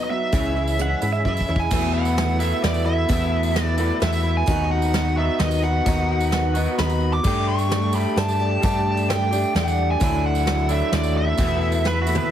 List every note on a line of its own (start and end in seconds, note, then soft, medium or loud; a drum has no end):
0.00 0.33 F#3 medium
0.00 0.32 B3 medium
0.00 0.33 B3 medium
0.00 0.33 D#4 medium
0.00 0.32 F#4 medium
0.00 0.34 F#4 medium
0.00 0.32 D#5 medium
0.00 0.10 D#5 medium
0.10 0.31 B2 medium
0.10 0.31 F#3 medium
0.10 1.22 E5 medium
0.32 0.93 C#2 medium
0.32 0.79 C#3 medium
0.32 0.76 E3 medium
0.32 0.77 G#3 medium
0.32 1.70 C#4 medium
0.32 0.79 C#4 medium
0.32 0.79 E4 medium
0.32 1.70 G#4 medium
0.32 1.70 E5 medium
0.32 kick loud
0.32 closed hi-hat medium
0.32 tambourine medium
0.56 0.77 C#3 medium
0.56 0.77 E3 medium
0.56 tambourine soft
0.67 tambourine medium
0.78 1.00 C#3 medium
0.78 1.02 E3 medium
0.78 1.02 G#3 medium
0.78 1.02 C#4 medium
0.78 1.00 E4 medium
0.78 1.10 F#5 medium
0.78 closed hi-hat medium
0.78 tambourine soft
1.01 1.23 G#2 medium
1.01 1.23 C#3 medium
1.01 1.23 E3 medium
1.01 1.25 G#3 soft
1.01 1.26 C#4 soft
1.01 1.25 E4 medium
1.01 tambourine medium
1.12 1.26 E5 medium
1.12 tambourine soft
1.25 1.46 F#2 medium
1.25 1.46 C#3 medium
1.25 1.49 E3 medium
1.25 1.49 G#3 medium
1.25 1.48 C#4 medium
1.25 1.47 E4 medium
1.25 1.61 E5 medium
1.25 1.60 E5 medium
1.25 kick medium
1.37 kick medium
1.37 tambourine medium
1.48 1.69 E2 medium
1.48 1.69 C#3 medium
1.48 1.70 E3 medium
1.48 1.72 G#3 soft
1.48 1.72 C#4 medium
1.48 1.72 E4 medium
1.48 tambourine soft
1.56 1.93 G#5 medium
1.56 kick medium
1.56 tambourine soft
1.71 2.51 E2 loud
1.71 2.18 E2 medium
1.71 2.18 B2 medium
1.71 2.15 E3 medium
1.71 2.16 A3 medium
1.71 2.18 B3 medium
1.71 4.45 E4 medium
1.71 2.17 E4 medium
1.71 4.45 B4 medium
1.71 4.45 A5 medium
1.71 kick loud
1.71 crash loud
1.71 tambourine medium
1.94 2.42 F#5 medium
2.05 tambourine medium
2.16 2.40 E3 medium
2.16 2.41 A3 medium
2.16 2.40 B3 medium
2.16 2.39 E4 medium
2.16 snare medium
2.16 closed hi-hat medium
2.28 tambourine soft
2.40 3.07 E2 medium
2.40 3.08 B2 medium
2.40 2.61 E3 soft
2.40 2.62 A3 soft
2.40 2.63 B3 soft
2.40 2.64 E4 soft
2.40 2.63 E5 medium
2.40 tambourine medium
2.62 3.04 E2 medium
2.62 2.86 E3 medium
2.62 2.86 A3 medium
2.62 2.85 B3 medium
2.62 2.84 E4 medium
2.62 2.85 D5 medium
2.62 snare medium
2.62 closed hi-hat medium
2.74 tambourine medium
2.85 3.08 E3 soft
2.85 3.08 A3 soft
2.85 3.09 B3 soft
2.85 3.09 E4 medium
2.85 3.63 E5 medium
3.08 3.55 E2 medium
3.08 3.90 E2 loud
3.08 3.55 B2 medium
3.08 3.53 E3 medium
3.08 3.55 A3 medium
3.08 3.56 B3 medium
3.08 3.56 E4 loud
3.08 kick loud
3.08 closed hi-hat medium
3.08 tambourine loud
3.43 tambourine medium
3.54 3.78 E3 medium
3.54 3.78 A3 medium
3.54 3.77 B3 medium
3.54 3.76 E4 medium
3.54 snare medium
3.54 closed hi-hat medium
3.63 3.98 D5 medium
3.63 tambourine soft
3.78 4.48 B2 medium
3.78 3.99 E3 soft
3.78 4.00 A3 medium
3.78 4.01 B3 medium
3.78 4.01 E4 medium
3.78 tambourine medium
3.82 4.48 E2 medium
4.00 4.42 E2 loud
4.00 4.24 E3 medium
4.00 4.24 A3 medium
4.00 4.23 B3 medium
4.00 4.22 E4 medium
4.00 4.35 E5 medium
4.00 snare medium
4.00 closed hi-hat medium
4.13 tambourine medium
4.23 4.46 E3 soft
4.23 4.47 A3 soft
4.23 4.46 B3 medium
4.23 4.47 E4 medium
4.37 4.69 G#5 medium
4.46 5.28 D#2 loud
4.46 4.92 D#3 medium
4.46 4.93 B3 medium
4.46 4.94 D#4 loud
4.46 7.22 F#4 medium
4.46 4.94 F#4 loud
4.46 7.21 D#5 medium
4.46 7.21 B5 medium
4.46 kick loud
4.46 closed hi-hat medium
4.46 tambourine medium
4.71 5.19 F#5 loud
4.82 tambourine medium
4.93 5.38 D#3 medium
4.93 5.39 B3 medium
4.93 5.40 D#4 medium
4.93 5.40 F#4 medium
4.93 snare medium
4.93 closed hi-hat medium
5.05 tambourine soft
5.16 5.84 D#3 medium
5.16 5.86 B3 medium
5.16 5.85 D#4 medium
5.16 5.84 F#4 loud
5.16 5.40 E5 medium
5.39 5.80 D#2 loud
5.39 5.63 D#3 medium
5.39 5.63 B3 medium
5.39 5.63 D#4 medium
5.39 5.61 F#4 medium
5.39 5.64 D#5 medium
5.39 snare medium
5.39 closed hi-hat medium
5.51 tambourine medium
5.62 5.86 B3 soft
5.62 5.86 D#4 soft
5.62 5.86 F#4 medium
5.62 6.74 F#5 loud
5.86 6.66 D#2 loud
5.86 6.29 D#3 medium
5.86 6.31 B3 medium
5.86 6.32 D#4 medium
5.86 6.32 F#4 loud
5.86 kick loud
5.86 closed hi-hat medium
5.86 tambourine loud
6.20 tambourine medium
6.31 6.55 D#3 medium
6.31 6.55 B3 medium
6.31 6.55 D#4 medium
6.31 6.54 F#4 medium
6.31 snare medium
6.31 closed hi-hat medium
6.55 7.23 D#3 medium
6.55 6.78 B3 soft
6.55 6.79 D#4 soft
6.55 6.78 F#4 soft
6.55 tambourine medium
6.67 tambourine soft
6.78 7.18 D#2 medium
6.78 7.24 D#3 medium
6.78 7.24 B3 medium
6.78 7.25 D#4 medium
6.78 7.26 F#4 medium
6.78 7.13 B5 loud
6.78 snare medium
6.78 closed hi-hat medium
6.89 tambourine medium
7.00 tambourine soft
7.12 7.48 D6 loud
7.12 tambourine soft
7.24 8.05 G2 loud
7.24 7.68 G3 medium
7.24 7.70 A3 loud
7.24 7.71 D4 medium
7.24 9.99 G4 medium
7.24 7.71 G4 medium
7.24 11.35 D5 medium
7.24 9.98 A5 medium
7.24 kick loud
7.24 tambourine medium
7.24 crash medium
7.49 7.94 C#6 loud
7.59 tambourine medium
7.70 8.15 G3 medium
7.70 8.17 A3 medium
7.70 8.17 D4 medium
7.70 8.18 G4 medium
7.70 snare medium
7.70 closed hi-hat medium
7.82 tambourine soft
7.93 8.63 A3 medium
7.93 8.64 D4 medium
7.93 8.61 G4 medium
7.93 8.16 B5 medium
7.93 tambourine medium
7.98 8.61 G3 medium
8.16 8.56 G2 loud
8.16 8.39 G3 medium
8.16 8.40 A3 medium
8.16 8.40 D4 medium
8.16 8.38 G4 medium
8.16 8.63 A5 loud
8.16 snare medium
8.16 closed hi-hat medium
8.28 tambourine medium
8.40 8.62 A3 soft
8.40 8.63 D4 medium
8.40 8.63 G4 medium
8.62 9.43 G2 loud
8.62 9.08 G3 medium
8.62 9.10 A3 medium
8.62 9.11 D4 medium
8.62 9.09 G4 medium
8.62 9.09 A5 loud
8.62 kick loud
8.62 closed hi-hat medium
8.62 tambourine loud
8.97 tambourine medium
9.09 9.32 G3 medium
9.09 9.32 A3 medium
9.09 9.32 D4 medium
9.09 9.30 G4 medium
9.09 9.56 G5 medium
9.09 snare medium
9.09 closed hi-hat medium
9.21 tambourine soft
9.31 10.00 G3 medium
9.31 9.54 A3 soft
9.31 9.55 D4 soft
9.31 9.55 G4 soft
9.31 tambourine loud
9.55 9.95 E2 medium
9.55 10.00 G3 medium
9.55 10.00 A3 medium
9.55 10.00 D4 medium
9.55 10.02 G4 medium
9.55 9.91 F#5 medium
9.55 snare medium
9.55 closed hi-hat medium
9.68 tambourine medium
9.91 10.26 G#5 medium
10.00 10.81 D2 loud
10.00 10.46 D3 medium
10.00 10.45 F#3 medium
10.00 10.46 A3 medium
10.00 10.46 D4 medium
10.00 12.31 E4 medium
10.00 10.48 E4 loud
10.00 11.37 F#5 medium
10.00 kick loud
10.00 closed hi-hat medium
10.00 tambourine loud
10.26 10.72 F#5 loud
10.35 tambourine medium
10.46 10.91 F#3 medium
10.46 10.92 A3 medium
10.46 10.93 D4 medium
10.46 10.95 E4 medium
10.46 snare medium
10.46 closed hi-hat medium
10.57 tambourine soft
10.68 11.37 D3 medium
10.68 11.38 F#3 medium
10.68 11.38 A3 medium
10.68 11.37 D4 medium
10.68 11.40 E4 medium
10.68 10.94 E5 medium
10.68 tambourine loud
10.92 11.32 D#2 medium
10.92 11.39 F#3 medium
10.92 11.38 A3 medium
10.92 11.39 D4 medium
10.92 11.40 E4 medium
10.92 11.17 D5 medium
10.92 snare medium
10.92 closed hi-hat medium
11.03 tambourine medium
11.17 12.31 E5 medium
11.38 12.18 E2 loud
11.38 11.84 E2 medium
11.38 11.84 B2 medium
11.38 11.83 E3 medium
11.38 11.84 A3 medium
11.38 11.85 B3 medium
11.38 11.85 E4 medium
11.38 12.31 B4 medium
11.38 12.31 A5 medium
11.38 kick loud
11.38 closed hi-hat medium
11.38 tambourine medium
11.61 tambourine soft
11.72 tambourine medium
11.84 12.07 E3 medium
11.84 12.07 A3 medium
11.84 12.07 B3 medium
11.84 12.06 E4 medium
11.84 12.01 B4 medium
11.84 snare medium
12.02 12.16 F#4 medium
12.07 12.31 E2 medium
12.07 12.31 B2 medium
12.07 12.28 E3 soft
12.07 12.30 A3 soft
12.07 12.30 B3 medium
12.07 12.30 E4 medium
12.07 tambourine medium
12.15 12.31 B4 medium
12.15 high tom medium